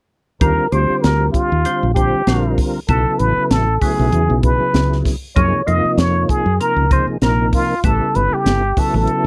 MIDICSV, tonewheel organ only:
0, 0, Header, 1, 2, 480
1, 0, Start_track
1, 0, Tempo, 619195
1, 319, Time_signature, 4, 2, 24, 8
1, 7184, End_track
2, 0, Start_track
2, 0, Title_t, "Tonewheel organ"
2, 0, Program_c, 0, 16
2, 318, Note_on_c, 0, 50, 60
2, 319, Note_on_c, 0, 55, 57
2, 319, Note_on_c, 0, 60, 57
2, 323, Note_on_c, 0, 65, 52
2, 323, Note_on_c, 0, 70, 66
2, 522, Note_off_c, 0, 50, 0
2, 523, Note_off_c, 0, 55, 0
2, 523, Note_off_c, 0, 60, 0
2, 525, Note_off_c, 0, 65, 0
2, 525, Note_off_c, 0, 70, 0
2, 558, Note_on_c, 0, 50, 64
2, 559, Note_on_c, 0, 55, 58
2, 560, Note_on_c, 0, 60, 60
2, 563, Note_on_c, 0, 65, 53
2, 563, Note_on_c, 0, 67, 68
2, 1167, Note_off_c, 0, 50, 0
2, 1168, Note_off_c, 0, 55, 0
2, 1168, Note_off_c, 0, 60, 0
2, 1170, Note_off_c, 0, 65, 0
2, 1170, Note_off_c, 0, 67, 0
2, 1280, Note_on_c, 0, 50, 58
2, 1282, Note_on_c, 0, 55, 55
2, 1284, Note_on_c, 0, 60, 56
2, 1284, Note_on_c, 0, 72, 62
2, 1285, Note_on_c, 0, 65, 52
2, 1483, Note_off_c, 0, 50, 0
2, 1484, Note_off_c, 0, 55, 0
2, 1485, Note_off_c, 0, 60, 0
2, 1485, Note_off_c, 0, 65, 0
2, 1485, Note_off_c, 0, 72, 0
2, 1516, Note_on_c, 0, 55, 61
2, 1517, Note_on_c, 0, 65, 59
2, 1519, Note_on_c, 0, 50, 65
2, 1519, Note_on_c, 0, 72, 76
2, 1520, Note_on_c, 0, 60, 61
2, 1721, Note_off_c, 0, 55, 0
2, 1722, Note_off_c, 0, 50, 0
2, 1722, Note_off_c, 0, 65, 0
2, 1723, Note_off_c, 0, 60, 0
2, 1723, Note_off_c, 0, 72, 0
2, 1759, Note_on_c, 0, 50, 61
2, 1762, Note_on_c, 0, 55, 53
2, 1764, Note_on_c, 0, 60, 51
2, 1766, Note_on_c, 0, 65, 50
2, 1768, Note_on_c, 0, 70, 66
2, 2166, Note_off_c, 0, 50, 0
2, 2167, Note_off_c, 0, 55, 0
2, 2168, Note_off_c, 0, 60, 0
2, 2169, Note_off_c, 0, 65, 0
2, 2170, Note_off_c, 0, 70, 0
2, 2238, Note_on_c, 0, 49, 64
2, 2239, Note_on_c, 0, 54, 54
2, 2242, Note_on_c, 0, 59, 57
2, 2242, Note_on_c, 0, 64, 57
2, 2243, Note_on_c, 0, 69, 68
2, 2847, Note_off_c, 0, 49, 0
2, 2848, Note_off_c, 0, 54, 0
2, 2849, Note_off_c, 0, 59, 0
2, 2849, Note_off_c, 0, 64, 0
2, 2849, Note_off_c, 0, 69, 0
2, 2957, Note_on_c, 0, 49, 57
2, 2959, Note_on_c, 0, 64, 50
2, 2960, Note_on_c, 0, 54, 49
2, 2961, Note_on_c, 0, 59, 54
2, 2962, Note_on_c, 0, 57, 62
2, 3185, Note_off_c, 0, 49, 0
2, 3187, Note_off_c, 0, 54, 0
2, 3188, Note_off_c, 0, 59, 0
2, 3189, Note_off_c, 0, 64, 0
2, 3194, Note_on_c, 0, 49, 61
2, 3197, Note_on_c, 0, 54, 56
2, 3198, Note_on_c, 0, 59, 58
2, 3198, Note_on_c, 0, 64, 57
2, 3198, Note_on_c, 0, 68, 62
2, 3201, Note_off_c, 0, 57, 0
2, 3999, Note_off_c, 0, 49, 0
2, 4000, Note_off_c, 0, 54, 0
2, 4000, Note_off_c, 0, 59, 0
2, 4001, Note_off_c, 0, 64, 0
2, 4001, Note_off_c, 0, 68, 0
2, 4151, Note_on_c, 0, 48, 59
2, 4154, Note_on_c, 0, 53, 56
2, 4154, Note_on_c, 0, 63, 53
2, 4156, Note_on_c, 0, 68, 68
2, 4157, Note_on_c, 0, 58, 56
2, 4359, Note_off_c, 0, 48, 0
2, 4360, Note_off_c, 0, 53, 0
2, 4360, Note_off_c, 0, 63, 0
2, 4361, Note_off_c, 0, 58, 0
2, 4361, Note_off_c, 0, 68, 0
2, 4391, Note_on_c, 0, 48, 64
2, 4392, Note_on_c, 0, 53, 57
2, 4394, Note_on_c, 0, 58, 61
2, 4397, Note_on_c, 0, 65, 70
2, 4399, Note_on_c, 0, 63, 56
2, 5003, Note_off_c, 0, 48, 0
2, 5004, Note_off_c, 0, 53, 0
2, 5005, Note_off_c, 0, 58, 0
2, 5006, Note_off_c, 0, 65, 0
2, 5007, Note_off_c, 0, 63, 0
2, 5119, Note_on_c, 0, 48, 56
2, 5119, Note_on_c, 0, 53, 55
2, 5120, Note_on_c, 0, 58, 52
2, 5121, Note_on_c, 0, 63, 54
2, 5125, Note_on_c, 0, 70, 58
2, 5322, Note_off_c, 0, 48, 0
2, 5322, Note_off_c, 0, 53, 0
2, 5323, Note_off_c, 0, 58, 0
2, 5323, Note_off_c, 0, 63, 0
2, 5325, Note_off_c, 0, 70, 0
2, 5356, Note_on_c, 0, 48, 69
2, 5358, Note_on_c, 0, 53, 66
2, 5360, Note_on_c, 0, 58, 68
2, 5360, Note_on_c, 0, 63, 62
2, 5363, Note_on_c, 0, 68, 72
2, 5560, Note_off_c, 0, 48, 0
2, 5562, Note_off_c, 0, 53, 0
2, 5562, Note_off_c, 0, 58, 0
2, 5563, Note_off_c, 0, 63, 0
2, 5564, Note_off_c, 0, 68, 0
2, 5598, Note_on_c, 0, 48, 53
2, 5599, Note_on_c, 0, 58, 56
2, 5600, Note_on_c, 0, 53, 50
2, 5602, Note_on_c, 0, 63, 54
2, 5604, Note_on_c, 0, 70, 63
2, 6004, Note_off_c, 0, 48, 0
2, 6005, Note_off_c, 0, 58, 0
2, 6006, Note_off_c, 0, 53, 0
2, 6006, Note_off_c, 0, 63, 0
2, 6007, Note_off_c, 0, 70, 0
2, 6079, Note_on_c, 0, 49, 63
2, 6080, Note_on_c, 0, 55, 60
2, 6080, Note_on_c, 0, 59, 62
2, 6083, Note_on_c, 0, 64, 57
2, 6084, Note_on_c, 0, 69, 69
2, 6687, Note_off_c, 0, 49, 0
2, 6687, Note_off_c, 0, 55, 0
2, 6687, Note_off_c, 0, 59, 0
2, 6689, Note_off_c, 0, 64, 0
2, 6689, Note_off_c, 0, 69, 0
2, 6799, Note_on_c, 0, 49, 59
2, 6799, Note_on_c, 0, 54, 57
2, 6801, Note_on_c, 0, 59, 52
2, 6801, Note_on_c, 0, 64, 52
2, 6801, Note_on_c, 0, 69, 69
2, 7184, Note_off_c, 0, 49, 0
2, 7184, Note_off_c, 0, 54, 0
2, 7184, Note_off_c, 0, 59, 0
2, 7184, Note_off_c, 0, 64, 0
2, 7184, Note_off_c, 0, 69, 0
2, 7184, End_track
0, 0, End_of_file